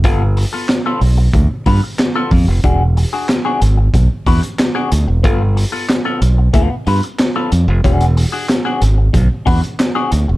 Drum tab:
HH |x-o-x-o-x-o-x-o-|x-o-x-x-x-oxx-x-|x-o-x-x-x-oxx-x-|xxo-x-x-x-oxx-x-|
CP |----x-------x---|----x-------x---|----x-------x---|----x-------x---|
SD |----o-------o---|----o-------o---|----o-------o---|----o-------o---|
BD |o-------o-o---o-|o-------o-o-----|o-------o-------|o-------o-o-----|